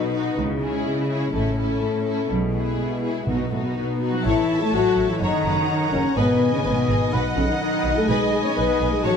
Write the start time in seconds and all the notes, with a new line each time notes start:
Already playing: B2 F#3 D#4 F#4 B4
0.05 D#5
0.13 D#4 F#4 B4
0.22 F#4
0.37 C#2 C#3 G#3 E4
0.54 C#4
0.62 C#4 E4 G#4
0.70 E4
0.86 C#3 G#4
1.02 C#5
1.10 C#4 E4 G#4
1.18 E4
1.33 A1 A2 A3 C#4 E4 A4
1.50 C#4
1.57 C#4 E4 A4
1.66 E4
1.81 A2 A4
1.98 C#5
2.05 C#4 E4 A4
2.13 E4
2.29 B1 B2 G#3 E4
2.46 B3
2.54 B3 E4 G#4
2.62 E4
2.78 B2 G#4
2.95 B4
3.03 B3 E4 G#4
3.11 E4
3.27 B1 B2 F#3 B3 D#4 F#4
3.44 B3
3.51 A2 A3 B3 D#4 F#4
3.59 D#4
3.64 B2 B3
3.75 B2 B3 F#4
3.93 B4
4.00 B3 D#4 F#4
4.09 D#4 F#4
4.14 F#3 F#4
4.25 A1 A2 E3 E4 C#5 E5 A5
4.42 E3
4.60 A3 A4
4.73 A1 F#3 F#4 A4 C#5
4.89 C#5
4.97 A1 A4
5.05 A4
5.09 E3 E4
5.20 F#1 F#2 D#3 D#4 C#5 F#5 A#5
5.37 C#3
5.45 F#1 B4
5.53 F#4
5.70 A#4
5.85 C#5
5.92 F#1 C#3 C#4 A#4
6.01 A#4
6.16 G#1 G#2 B2 B3 B4 D#5 G#5 B5
6.34 D#3
6.52 C#3 C#4
6.63 G#1 B2 B3 B4 D#5 B5
6.81 D#4
6.89 G#1 G#4
7.12 B1 B2 B4 F#5 B5
7.29 F#3
7.35 B1 C#3 C#4 A4
7.46 D#4
7.50 D#3
7.61 D#3 D#4 B4 F#5 B5
7.77 D#4
7.85 B1 F#4
7.94 A3 A4 B4
7.98 A4
8.08 B1 B2 G#3 G#4 B4 D#5 G#5 B5
8.25 G#3
8.41 D#4 C#5
8.45 C#4
8.56 B1 B3 G#4 B4 D#5 B5
8.80 B1 G#4
8.89 G#4
8.94 G#3 G#4
9.03 A1 A2 F#3 F#4 C#5 E5 A5